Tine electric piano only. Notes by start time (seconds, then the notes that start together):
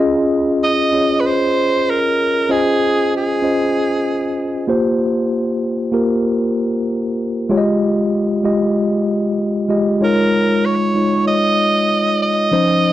Already playing: C#4
0.00 F4 G#4 D#5
0.93 C#4 F4 G#4 C#5
1.01 D#5
2.49 C#4 F4 C5 D#5
3.42 C#4 F4 C5 D#5
4.67 A#3 F4 G4 C5
5.92 A#3 F4 G4 A#4
7.49 G#3 F4 G4 C#5
7.58 D#5
8.43 G#3 F4 G4 D#5
9.68 G#3 F4 G4 D#5
10.01 G#3 D#4 F4 C#5
10.94 G#3 D#4 F4 C#5
12.51 F3 C#4 D#4 C5